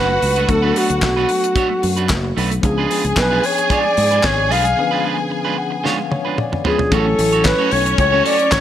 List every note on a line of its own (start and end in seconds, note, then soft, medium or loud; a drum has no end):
0.00 0.17 F#1 medium
0.00 0.44 F#3 medium
0.00 0.11 A3 medium
0.00 0.44 A3 medium
0.00 0.45 B3 medium
0.00 0.45 D4 medium
0.00 2.32 F#4 loud
0.00 0.45 A4 medium
0.00 0.51 B4 medium
0.00 2.32 F#5 loud
0.10 muted clean electric guitar stroke soft
0.22 0.44 C#2 medium
0.22 muted clean electric guitar stroke soft
0.22 open hi-hat medium
0.36 0.48 A3 soft
0.36 0.48 D4 medium
0.36 0.48 F#4 medium
0.36 0.48 B4 medium
0.36 closed hi-hat soft
0.47 0.71 D2 loud
0.47 2.58 F#3 medium
0.47 2.59 A3 medium
0.47 2.59 B3 medium
0.47 2.60 D4 medium
0.47 0.79 A4 loud
0.47 2.60 A4 medium
0.47 muted clean electric guitar stroke soft
0.47 kick loud
0.47 closed hi-hat medium
0.63 0.74 A3 medium
0.63 0.75 D4 medium
0.63 0.76 F#4 medium
0.63 0.77 B4 medium
0.76 0.89 A3 medium
0.76 0.89 D4 medium
0.76 0.90 F#4 medium
0.76 2.37 F#4 medium
0.76 0.89 B4 medium
0.76 open hi-hat medium
0.90 1.00 D2 medium
0.90 muted clean electric guitar stroke soft
0.90 closed hi-hat soft
1.02 1.24 B1 medium
1.02 muted clean electric guitar stroke soft
1.02 kick medium
1.02 snare loud
1.02 clap medium
1.02 closed hi-hat medium
1.17 1.29 A3 medium
1.17 1.29 D4 medium
1.17 1.30 F#4 medium
1.17 1.30 B4 medium
1.29 muted clean electric guitar stroke soft
1.29 open hi-hat medium
1.44 muted clean electric guitar stroke soft
1.44 closed hi-hat medium
1.56 1.72 A3 medium
1.56 1.70 D4 medium
1.56 1.69 F#4 medium
1.56 1.69 C#5 loud
1.56 kick loud
1.56 closed hi-hat medium
1.69 muted clean electric guitar stroke medium
1.82 2.11 F#2 medium
1.82 muted clean electric guitar stroke soft
1.82 open hi-hat medium
1.97 2.09 A3 medium
1.97 2.09 D4 medium
1.97 2.09 F#4 soft
1.97 2.08 B4 medium
1.97 closed hi-hat soft
2.09 2.32 F#1 medium
2.09 muted clean electric guitar stroke soft
2.09 kick loud
2.09 snare loud
2.09 clap loud
2.09 clap medium
2.09 closed hi-hat medium
2.24 muted clean electric guitar stroke soft
2.37 2.59 B1 medium
2.37 2.53 A3 medium
2.37 2.51 D4 medium
2.37 2.51 F#4 medium
2.37 2.50 B4 medium
2.37 open hi-hat medium
2.51 muted clean electric guitar stroke soft
2.51 closed hi-hat medium
2.62 2.85 C#2 loud
2.62 4.73 F3 medium
2.62 4.73 B3 medium
2.62 4.73 C#4 medium
2.62 4.74 D4 medium
2.62 6.61 G#4 loud
2.62 4.74 G#4 medium
2.62 6.61 G#5 loud
2.62 muted clean electric guitar stroke soft
2.62 kick loud
2.62 closed hi-hat medium
2.66 3.20 G#4 medium
2.78 2.89 G#3 medium
2.78 2.90 D4 medium
2.78 2.91 F4 medium
2.78 2.91 B4 medium
2.91 3.03 G#3 medium
2.91 3.04 D4 medium
2.91 3.04 F4 medium
2.91 3.04 B4 medium
2.91 open hi-hat medium
3.04 3.15 C#2 medium
3.04 muted clean electric guitar stroke soft
3.04 closed hi-hat soft
3.16 3.39 B1 loud
3.16 3.47 B4 medium
3.16 muted clean electric guitar stroke soft
3.16 kick loud
3.16 snare loud
3.16 clap medium
3.16 closed hi-hat medium
3.31 3.43 G#3 medium
3.31 3.44 D4 medium
3.31 3.44 F4 medium
3.31 3.44 B4 medium
3.43 3.74 C#5 medium
3.43 muted clean electric guitar stroke soft
3.43 open hi-hat medium
3.58 muted clean electric guitar stroke medium
3.58 closed hi-hat soft
3.70 3.87 G#3 medium
3.70 3.85 D4 medium
3.70 3.84 F4 medium
3.70 3.84 C#5 medium
3.70 4.27 D5 loud
3.70 kick loud
3.70 closed hi-hat medium
3.85 muted clean electric guitar stroke medium
3.97 4.19 G#2 medium
3.97 muted clean electric guitar stroke soft
3.97 open hi-hat medium
4.11 4.23 G#3 soft
4.11 4.24 D4 soft
4.11 4.23 F4 soft
4.11 4.23 B4 medium
4.11 closed hi-hat soft
4.23 4.51 G#1 medium
4.23 4.53 C#5 loud
4.23 muted clean electric guitar stroke soft
4.23 kick loud
4.23 snare loud
4.23 clap medium
4.23 closed hi-hat medium
4.38 muted clean electric guitar stroke soft
4.50 4.73 B1 medium
4.50 4.67 G#3 medium
4.50 4.65 D4 loud
4.50 4.65 F4 medium
4.50 4.64 B4 medium
4.50 5.05 F5 loud
4.50 open hi-hat medium
4.65 muted clean electric guitar stroke medium
4.65 closed hi-hat medium
4.76 4.84 D3 medium
4.76 6.61 B3 medium
4.76 6.61 C#4 medium
4.76 6.61 D4 medium
4.76 6.62 B4 medium
4.76 muted clean electric guitar stroke soft
4.83 6.64 F3 medium
4.91 5.03 G#3 medium
4.91 5.03 D4 medium
4.91 5.04 F4 medium
4.91 5.04 B4 medium
5.04 5.17 G#3 medium
5.04 5.17 D4 medium
5.04 5.17 F4 medium
5.04 5.17 B4 medium
5.18 muted clean electric guitar stroke soft
5.30 muted clean electric guitar stroke soft
5.45 5.56 G#3 medium
5.45 5.56 D4 medium
5.45 5.56 F4 medium
5.45 5.57 B4 medium
5.57 5.83 F#5 medium
5.57 muted clean electric guitar stroke soft
5.71 muted clean electric guitar stroke medium
5.84 6.01 G#3 medium
5.84 5.99 D4 medium
5.84 5.98 F4 medium
5.84 5.98 C#5 medium
5.84 6.10 F5 medium
5.84 snare medium
5.98 muted clean electric guitar stroke medium
6.11 6.36 C#5 medium
6.11 muted clean electric guitar stroke soft
6.11 high tom medium
6.25 6.36 G#3 soft
6.25 6.37 D4 soft
6.25 6.37 F4 soft
6.25 6.37 B4 soft
6.38 6.63 D5 medium
6.38 muted clean electric guitar stroke medium
6.38 mid tom medium
6.52 muted clean electric guitar stroke soft
6.52 mid tom medium
6.65 6.92 F3 medium
6.65 6.81 G#3 medium
6.65 6.92 B3 medium
6.65 6.90 C#4 medium
6.65 6.80 D4 medium
6.65 6.92 D4 medium
6.65 6.80 F4 medium
6.65 6.92 F4 medium
6.65 6.94 G#4 medium
6.65 6.79 B4 medium
6.65 6.90 C#5 medium
6.65 floor tom loud
6.79 muted clean electric guitar stroke soft
6.79 floor tom loud
6.90 7.14 A1 loud
6.90 8.61 F#3 medium
6.90 8.61 A3 medium
6.90 8.61 C#4 loud
6.90 8.61 C#4 medium
6.90 7.08 C#4 medium
6.90 8.61 E4 medium
6.90 7.07 F#4 loud
6.90 6.99 G#4 medium
6.90 7.47 A4 loud
6.90 7.06 A4 medium
6.90 8.61 C#5 loud
6.90 7.06 C#5 loud
6.90 kick loud
6.90 closed hi-hat medium
6.99 8.61 A4 medium
7.07 muted clean electric guitar stroke soft
7.19 7.52 A1 loud
7.19 muted clean electric guitar stroke soft
7.19 open hi-hat medium
7.32 7.43 C#4 medium
7.32 7.44 F#4 medium
7.32 7.44 A4 medium
7.32 7.44 C#5 medium
7.32 closed hi-hat soft
7.44 7.73 B4 loud
7.44 muted clean electric guitar stroke soft
7.44 kick loud
7.44 snare loud
7.44 clap medium
7.44 closed hi-hat medium
7.59 7.70 C#4 medium
7.59 7.70 F#4 medium
7.59 7.71 A4 medium
7.59 7.71 C#5 medium
7.71 7.94 B1 medium
7.71 7.98 C#5 loud
7.71 muted clean electric guitar stroke soft
7.71 open hi-hat medium
7.86 muted clean electric guitar stroke medium
7.86 closed hi-hat medium
7.98 8.20 C#2 loud
7.98 8.23 C#5 loud
7.98 muted clean electric guitar stroke soft
7.98 kick loud
7.98 closed hi-hat medium
8.12 8.23 C#4 medium
8.12 8.23 F#4 medium
8.12 8.24 A4 medium
8.12 8.25 C#5 medium
8.24 8.38 C#4 medium
8.24 8.38 F#4 medium
8.24 8.38 A4 medium
8.24 8.37 C#5 medium
8.24 8.53 D5 loud
8.24 open hi-hat medium
8.38 muted clean electric guitar stroke soft
8.38 closed hi-hat soft
8.51 8.61 A1 loud
8.51 8.61 C#5 loud
8.51 muted clean electric guitar stroke soft
8.51 kick loud
8.51 snare loud
8.51 clap medium
8.51 clap loud
8.51 closed hi-hat medium